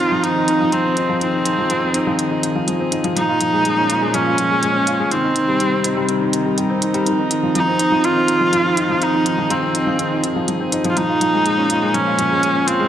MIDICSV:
0, 0, Header, 1, 5, 480
1, 0, Start_track
1, 0, Key_signature, -4, "minor"
1, 0, Tempo, 487805
1, 1192, Time_signature, 4, 2, 24, 8
1, 12676, End_track
2, 0, Start_track
2, 0, Title_t, "Viola"
2, 0, Program_c, 0, 41
2, 0, Note_on_c, 0, 65, 92
2, 231, Note_on_c, 0, 63, 79
2, 246, Note_off_c, 0, 65, 0
2, 711, Note_on_c, 0, 60, 71
2, 726, Note_off_c, 0, 63, 0
2, 1187, Note_off_c, 0, 60, 0
2, 1193, Note_on_c, 0, 60, 72
2, 2113, Note_off_c, 0, 60, 0
2, 3114, Note_on_c, 0, 63, 91
2, 4073, Note_on_c, 0, 61, 80
2, 4088, Note_off_c, 0, 63, 0
2, 5033, Note_on_c, 0, 60, 73
2, 5048, Note_off_c, 0, 61, 0
2, 5992, Note_off_c, 0, 60, 0
2, 7433, Note_on_c, 0, 63, 81
2, 7914, Note_on_c, 0, 65, 87
2, 7929, Note_off_c, 0, 63, 0
2, 8882, Note_on_c, 0, 63, 79
2, 8897, Note_off_c, 0, 65, 0
2, 9358, Note_on_c, 0, 60, 66
2, 9373, Note_off_c, 0, 63, 0
2, 10075, Note_off_c, 0, 60, 0
2, 10723, Note_on_c, 0, 65, 64
2, 10795, Note_on_c, 0, 63, 89
2, 10810, Note_off_c, 0, 65, 0
2, 11751, Note_on_c, 0, 61, 83
2, 11766, Note_off_c, 0, 63, 0
2, 12472, Note_on_c, 0, 60, 86
2, 12487, Note_off_c, 0, 61, 0
2, 12676, Note_off_c, 0, 60, 0
2, 12676, End_track
3, 0, Start_track
3, 0, Title_t, "String quartet"
3, 0, Program_c, 1, 48
3, 0, Note_on_c, 1, 53, 55
3, 0, Note_on_c, 1, 60, 74
3, 0, Note_on_c, 1, 63, 80
3, 0, Note_on_c, 1, 68, 58
3, 0, Note_on_c, 1, 70, 77
3, 808, Note_off_c, 1, 70, 0
3, 3112, Note_off_c, 1, 60, 0
3, 3113, Note_off_c, 1, 53, 0
3, 3116, Note_on_c, 1, 46, 74
3, 3204, Note_on_c, 1, 58, 61
3, 3516, Note_on_c, 1, 61, 62
3, 3879, Note_off_c, 1, 63, 0
3, 5030, Note_off_c, 1, 68, 0
3, 5034, Note_off_c, 1, 46, 0
3, 5034, Note_off_c, 1, 61, 0
3, 5036, Note_on_c, 1, 48, 68
3, 5088, Note_on_c, 1, 60, 74
3, 5306, Note_on_c, 1, 63, 70
3, 5743, Note_off_c, 1, 58, 0
3, 5882, Note_on_c, 1, 70, 59
3, 6953, Note_on_c, 1, 53, 63
3, 6954, Note_off_c, 1, 48, 0
3, 7135, Note_on_c, 1, 68, 64
3, 8337, Note_off_c, 1, 70, 0
3, 10792, Note_off_c, 1, 53, 0
3, 10793, Note_off_c, 1, 60, 0
3, 10800, Note_on_c, 1, 46, 60
3, 10968, Note_on_c, 1, 58, 67
3, 11424, Note_on_c, 1, 61, 72
3, 11560, Note_off_c, 1, 63, 0
3, 12676, Note_off_c, 1, 46, 0
3, 12676, Note_off_c, 1, 58, 0
3, 12676, Note_off_c, 1, 61, 0
3, 12676, Note_off_c, 1, 68, 0
3, 12676, End_track
4, 0, Start_track
4, 0, Title_t, "Felt piano"
4, 0, Program_c, 2, 0
4, 0, Control_c, 2, 64, 127
4, 0, Note_on_c, 2, 51, 57
4, 0, Note_on_c, 2, 53, 62
4, 0, Note_on_c, 2, 60, 55
4, 0, Note_on_c, 2, 63, 56
4, 107, Note_off_c, 2, 63, 0
4, 115, Note_off_c, 2, 53, 0
4, 115, Note_on_c, 2, 53, 70
4, 227, Note_off_c, 2, 53, 0
4, 234, Note_off_c, 2, 51, 0
4, 234, Note_on_c, 2, 51, 63
4, 347, Note_off_c, 2, 51, 0
4, 356, Note_on_c, 2, 63, 55
4, 467, Note_off_c, 2, 63, 0
4, 474, Note_on_c, 2, 51, 57
4, 541, Note_off_c, 2, 51, 0
4, 594, Note_on_c, 2, 53, 59
4, 699, Note_off_c, 2, 53, 0
4, 713, Note_on_c, 2, 53, 65
4, 826, Note_off_c, 2, 53, 0
4, 836, Note_off_c, 2, 60, 0
4, 836, Note_on_c, 2, 60, 54
4, 948, Note_off_c, 2, 60, 0
4, 955, Note_on_c, 2, 63, 62
4, 1068, Note_off_c, 2, 63, 0
4, 1075, Note_on_c, 2, 53, 81
4, 1187, Note_off_c, 2, 53, 0
4, 1198, Note_on_c, 2, 51, 62
4, 1309, Note_off_c, 2, 51, 0
4, 1317, Note_on_c, 2, 63, 56
4, 1428, Note_off_c, 2, 63, 0
4, 1436, Note_on_c, 2, 51, 62
4, 1502, Note_off_c, 2, 51, 0
4, 1556, Note_on_c, 2, 53, 59
4, 1660, Note_off_c, 2, 53, 0
4, 1675, Note_on_c, 2, 53, 67
4, 1787, Note_off_c, 2, 53, 0
4, 1793, Note_on_c, 2, 60, 60
4, 1906, Note_off_c, 2, 60, 0
4, 1914, Note_on_c, 2, 63, 58
4, 2027, Note_off_c, 2, 63, 0
4, 2035, Note_on_c, 2, 53, 77
4, 2147, Note_off_c, 2, 53, 0
4, 2154, Note_on_c, 2, 51, 66
4, 2267, Note_off_c, 2, 51, 0
4, 2275, Note_on_c, 2, 63, 56
4, 2388, Note_off_c, 2, 63, 0
4, 2395, Note_on_c, 2, 51, 59
4, 2462, Note_off_c, 2, 51, 0
4, 2513, Note_on_c, 2, 53, 57
4, 2618, Note_off_c, 2, 53, 0
4, 2633, Note_on_c, 2, 53, 60
4, 2746, Note_off_c, 2, 53, 0
4, 2752, Note_on_c, 2, 60, 59
4, 2866, Note_off_c, 2, 60, 0
4, 2873, Note_on_c, 2, 63, 56
4, 2986, Note_off_c, 2, 63, 0
4, 2992, Note_on_c, 2, 53, 80
4, 3098, Note_off_c, 2, 53, 0
4, 3113, Note_on_c, 2, 53, 62
4, 3123, Control_c, 2, 64, 0
4, 3226, Note_off_c, 2, 53, 0
4, 3234, Note_on_c, 2, 65, 61
4, 3305, Control_c, 2, 64, 127
4, 3347, Note_off_c, 2, 65, 0
4, 3355, Note_on_c, 2, 53, 61
4, 3422, Note_off_c, 2, 53, 0
4, 3474, Note_on_c, 2, 56, 59
4, 3581, Note_off_c, 2, 56, 0
4, 3595, Note_on_c, 2, 56, 64
4, 3707, Note_off_c, 2, 56, 0
4, 3716, Note_on_c, 2, 61, 59
4, 3828, Note_off_c, 2, 61, 0
4, 3832, Note_on_c, 2, 65, 59
4, 3946, Note_off_c, 2, 65, 0
4, 3954, Note_on_c, 2, 56, 76
4, 4067, Note_off_c, 2, 56, 0
4, 4077, Note_on_c, 2, 53, 63
4, 4188, Note_off_c, 2, 53, 0
4, 4196, Note_on_c, 2, 65, 55
4, 4308, Note_off_c, 2, 65, 0
4, 4315, Note_on_c, 2, 53, 56
4, 4381, Note_off_c, 2, 53, 0
4, 4435, Note_on_c, 2, 56, 58
4, 4538, Note_off_c, 2, 56, 0
4, 4553, Note_on_c, 2, 56, 61
4, 4666, Note_off_c, 2, 56, 0
4, 4669, Note_on_c, 2, 61, 59
4, 4784, Note_off_c, 2, 61, 0
4, 4792, Note_on_c, 2, 65, 64
4, 4906, Note_off_c, 2, 65, 0
4, 4911, Note_on_c, 2, 56, 76
4, 5025, Note_off_c, 2, 56, 0
4, 5030, Note_on_c, 2, 51, 63
4, 5046, Control_c, 2, 64, 0
4, 5145, Note_off_c, 2, 51, 0
4, 5152, Note_on_c, 2, 63, 60
4, 5226, Control_c, 2, 64, 127
4, 5266, Note_off_c, 2, 63, 0
4, 5270, Note_on_c, 2, 51, 60
4, 5339, Note_off_c, 2, 51, 0
4, 5385, Note_on_c, 2, 55, 57
4, 5497, Note_off_c, 2, 55, 0
4, 5511, Note_on_c, 2, 55, 59
4, 5625, Note_off_c, 2, 55, 0
4, 5630, Note_on_c, 2, 60, 60
4, 5745, Note_off_c, 2, 60, 0
4, 5750, Note_on_c, 2, 63, 58
4, 5865, Note_off_c, 2, 63, 0
4, 5871, Note_on_c, 2, 55, 75
4, 5985, Note_off_c, 2, 55, 0
4, 5990, Note_on_c, 2, 51, 68
4, 6105, Note_off_c, 2, 51, 0
4, 6113, Note_on_c, 2, 63, 52
4, 6226, Note_off_c, 2, 63, 0
4, 6232, Note_on_c, 2, 51, 57
4, 6300, Note_off_c, 2, 51, 0
4, 6350, Note_on_c, 2, 55, 56
4, 6457, Note_off_c, 2, 55, 0
4, 6472, Note_on_c, 2, 55, 64
4, 6586, Note_off_c, 2, 55, 0
4, 6589, Note_on_c, 2, 60, 61
4, 6704, Note_off_c, 2, 60, 0
4, 6710, Note_on_c, 2, 63, 57
4, 6825, Note_off_c, 2, 63, 0
4, 6828, Note_on_c, 2, 55, 79
4, 6944, Note_off_c, 2, 55, 0
4, 6952, Note_on_c, 2, 51, 65
4, 6963, Control_c, 2, 64, 0
4, 7066, Note_off_c, 2, 51, 0
4, 7072, Note_on_c, 2, 63, 58
4, 7148, Control_c, 2, 64, 127
4, 7186, Note_off_c, 2, 63, 0
4, 7188, Note_on_c, 2, 51, 61
4, 7258, Note_off_c, 2, 51, 0
4, 7311, Note_on_c, 2, 53, 54
4, 7416, Note_off_c, 2, 53, 0
4, 7431, Note_on_c, 2, 53, 61
4, 7545, Note_off_c, 2, 53, 0
4, 7552, Note_on_c, 2, 60, 57
4, 7666, Note_off_c, 2, 60, 0
4, 7669, Note_on_c, 2, 63, 60
4, 7784, Note_off_c, 2, 63, 0
4, 7789, Note_on_c, 2, 53, 76
4, 7904, Note_off_c, 2, 53, 0
4, 7909, Note_on_c, 2, 51, 67
4, 8025, Note_off_c, 2, 51, 0
4, 8030, Note_on_c, 2, 63, 57
4, 8145, Note_off_c, 2, 63, 0
4, 8150, Note_on_c, 2, 51, 58
4, 8219, Note_off_c, 2, 51, 0
4, 8272, Note_on_c, 2, 53, 57
4, 8375, Note_off_c, 2, 53, 0
4, 8390, Note_on_c, 2, 53, 69
4, 8505, Note_off_c, 2, 53, 0
4, 8509, Note_on_c, 2, 60, 60
4, 8624, Note_off_c, 2, 60, 0
4, 8628, Note_on_c, 2, 63, 61
4, 8744, Note_off_c, 2, 63, 0
4, 8749, Note_on_c, 2, 53, 79
4, 8864, Note_off_c, 2, 53, 0
4, 8869, Note_on_c, 2, 51, 58
4, 8984, Note_off_c, 2, 51, 0
4, 8990, Note_on_c, 2, 63, 58
4, 9105, Note_off_c, 2, 63, 0
4, 9109, Note_on_c, 2, 51, 62
4, 9179, Note_off_c, 2, 51, 0
4, 9231, Note_on_c, 2, 53, 61
4, 9335, Note_off_c, 2, 53, 0
4, 9350, Note_on_c, 2, 53, 67
4, 9465, Note_off_c, 2, 53, 0
4, 9469, Note_on_c, 2, 60, 64
4, 9584, Note_off_c, 2, 60, 0
4, 9587, Note_on_c, 2, 63, 60
4, 9703, Note_off_c, 2, 63, 0
4, 9707, Note_on_c, 2, 53, 76
4, 9823, Note_off_c, 2, 53, 0
4, 9828, Note_on_c, 2, 51, 65
4, 9944, Note_off_c, 2, 51, 0
4, 9951, Note_on_c, 2, 63, 53
4, 10065, Note_off_c, 2, 63, 0
4, 10071, Note_on_c, 2, 51, 64
4, 10140, Note_off_c, 2, 51, 0
4, 10192, Note_on_c, 2, 53, 60
4, 10297, Note_off_c, 2, 53, 0
4, 10312, Note_on_c, 2, 53, 62
4, 10426, Note_off_c, 2, 53, 0
4, 10432, Note_on_c, 2, 60, 63
4, 10546, Note_off_c, 2, 60, 0
4, 10553, Note_on_c, 2, 63, 59
4, 10666, Note_off_c, 2, 63, 0
4, 10673, Note_on_c, 2, 53, 77
4, 10779, Note_off_c, 2, 53, 0
4, 10793, Note_on_c, 2, 53, 62
4, 10805, Control_c, 2, 64, 0
4, 10906, Note_off_c, 2, 53, 0
4, 10913, Note_on_c, 2, 65, 57
4, 10949, Control_c, 2, 64, 127
4, 11026, Note_off_c, 2, 65, 0
4, 11033, Note_on_c, 2, 53, 63
4, 11101, Note_off_c, 2, 53, 0
4, 11152, Note_on_c, 2, 56, 60
4, 11256, Note_off_c, 2, 56, 0
4, 11271, Note_on_c, 2, 56, 65
4, 11385, Note_off_c, 2, 56, 0
4, 11389, Note_on_c, 2, 61, 64
4, 11504, Note_off_c, 2, 61, 0
4, 11510, Note_on_c, 2, 65, 62
4, 11625, Note_off_c, 2, 65, 0
4, 11631, Note_on_c, 2, 56, 76
4, 11745, Note_off_c, 2, 56, 0
4, 11753, Note_on_c, 2, 53, 68
4, 11866, Note_off_c, 2, 53, 0
4, 11871, Note_on_c, 2, 65, 57
4, 11985, Note_off_c, 2, 65, 0
4, 11991, Note_on_c, 2, 53, 60
4, 12060, Note_off_c, 2, 53, 0
4, 12113, Note_on_c, 2, 56, 63
4, 12218, Note_off_c, 2, 56, 0
4, 12232, Note_on_c, 2, 56, 64
4, 12346, Note_off_c, 2, 56, 0
4, 12353, Note_on_c, 2, 61, 61
4, 12466, Note_off_c, 2, 61, 0
4, 12472, Note_on_c, 2, 65, 61
4, 12586, Note_off_c, 2, 65, 0
4, 12591, Note_on_c, 2, 56, 88
4, 12676, Note_off_c, 2, 56, 0
4, 12676, End_track
5, 0, Start_track
5, 0, Title_t, "Drums"
5, 232, Note_on_c, 9, 42, 32
5, 331, Note_off_c, 9, 42, 0
5, 472, Note_on_c, 9, 42, 45
5, 570, Note_off_c, 9, 42, 0
5, 712, Note_on_c, 9, 42, 34
5, 811, Note_off_c, 9, 42, 0
5, 953, Note_on_c, 9, 42, 44
5, 1051, Note_off_c, 9, 42, 0
5, 1194, Note_on_c, 9, 42, 32
5, 1293, Note_off_c, 9, 42, 0
5, 1432, Note_on_c, 9, 42, 50
5, 1530, Note_off_c, 9, 42, 0
5, 1671, Note_on_c, 9, 42, 34
5, 1770, Note_off_c, 9, 42, 0
5, 1911, Note_on_c, 9, 42, 46
5, 2010, Note_off_c, 9, 42, 0
5, 2153, Note_on_c, 9, 42, 33
5, 2251, Note_off_c, 9, 42, 0
5, 2394, Note_on_c, 9, 42, 47
5, 2493, Note_off_c, 9, 42, 0
5, 2634, Note_on_c, 9, 42, 35
5, 2733, Note_off_c, 9, 42, 0
5, 2874, Note_on_c, 9, 42, 48
5, 2972, Note_off_c, 9, 42, 0
5, 2993, Note_on_c, 9, 42, 22
5, 3092, Note_off_c, 9, 42, 0
5, 3115, Note_on_c, 9, 42, 34
5, 3213, Note_off_c, 9, 42, 0
5, 3351, Note_on_c, 9, 42, 53
5, 3450, Note_off_c, 9, 42, 0
5, 3592, Note_on_c, 9, 42, 35
5, 3691, Note_off_c, 9, 42, 0
5, 3834, Note_on_c, 9, 42, 49
5, 3933, Note_off_c, 9, 42, 0
5, 4074, Note_on_c, 9, 42, 34
5, 4172, Note_off_c, 9, 42, 0
5, 4311, Note_on_c, 9, 42, 50
5, 4409, Note_off_c, 9, 42, 0
5, 4552, Note_on_c, 9, 42, 36
5, 4651, Note_off_c, 9, 42, 0
5, 4793, Note_on_c, 9, 42, 52
5, 4891, Note_off_c, 9, 42, 0
5, 5033, Note_on_c, 9, 42, 31
5, 5131, Note_off_c, 9, 42, 0
5, 5271, Note_on_c, 9, 42, 50
5, 5370, Note_off_c, 9, 42, 0
5, 5511, Note_on_c, 9, 42, 33
5, 5610, Note_off_c, 9, 42, 0
5, 5750, Note_on_c, 9, 42, 53
5, 5848, Note_off_c, 9, 42, 0
5, 5988, Note_on_c, 9, 42, 33
5, 6087, Note_off_c, 9, 42, 0
5, 6231, Note_on_c, 9, 42, 49
5, 6329, Note_off_c, 9, 42, 0
5, 6472, Note_on_c, 9, 42, 35
5, 6570, Note_off_c, 9, 42, 0
5, 6711, Note_on_c, 9, 42, 50
5, 6809, Note_off_c, 9, 42, 0
5, 6832, Note_on_c, 9, 42, 21
5, 6930, Note_off_c, 9, 42, 0
5, 6952, Note_on_c, 9, 42, 34
5, 7050, Note_off_c, 9, 42, 0
5, 7191, Note_on_c, 9, 42, 46
5, 7289, Note_off_c, 9, 42, 0
5, 7432, Note_on_c, 9, 42, 34
5, 7530, Note_off_c, 9, 42, 0
5, 7670, Note_on_c, 9, 42, 47
5, 7768, Note_off_c, 9, 42, 0
5, 7911, Note_on_c, 9, 42, 31
5, 8010, Note_off_c, 9, 42, 0
5, 8151, Note_on_c, 9, 42, 44
5, 8249, Note_off_c, 9, 42, 0
5, 8392, Note_on_c, 9, 42, 34
5, 8490, Note_off_c, 9, 42, 0
5, 8632, Note_on_c, 9, 42, 48
5, 8731, Note_off_c, 9, 42, 0
5, 8872, Note_on_c, 9, 42, 31
5, 8970, Note_off_c, 9, 42, 0
5, 9111, Note_on_c, 9, 42, 47
5, 9209, Note_off_c, 9, 42, 0
5, 9352, Note_on_c, 9, 42, 34
5, 9451, Note_off_c, 9, 42, 0
5, 9592, Note_on_c, 9, 42, 44
5, 9691, Note_off_c, 9, 42, 0
5, 9831, Note_on_c, 9, 42, 30
5, 9930, Note_off_c, 9, 42, 0
5, 10072, Note_on_c, 9, 42, 44
5, 10171, Note_off_c, 9, 42, 0
5, 10313, Note_on_c, 9, 42, 33
5, 10411, Note_off_c, 9, 42, 0
5, 10552, Note_on_c, 9, 42, 47
5, 10650, Note_off_c, 9, 42, 0
5, 10671, Note_on_c, 9, 42, 22
5, 10770, Note_off_c, 9, 42, 0
5, 10792, Note_on_c, 9, 42, 30
5, 10890, Note_off_c, 9, 42, 0
5, 11033, Note_on_c, 9, 42, 49
5, 11131, Note_off_c, 9, 42, 0
5, 11273, Note_on_c, 9, 42, 32
5, 11371, Note_off_c, 9, 42, 0
5, 11511, Note_on_c, 9, 42, 48
5, 11610, Note_off_c, 9, 42, 0
5, 11753, Note_on_c, 9, 42, 31
5, 11851, Note_off_c, 9, 42, 0
5, 11991, Note_on_c, 9, 42, 46
5, 12089, Note_off_c, 9, 42, 0
5, 12232, Note_on_c, 9, 42, 33
5, 12330, Note_off_c, 9, 42, 0
5, 12474, Note_on_c, 9, 42, 46
5, 12572, Note_off_c, 9, 42, 0
5, 12676, End_track
0, 0, End_of_file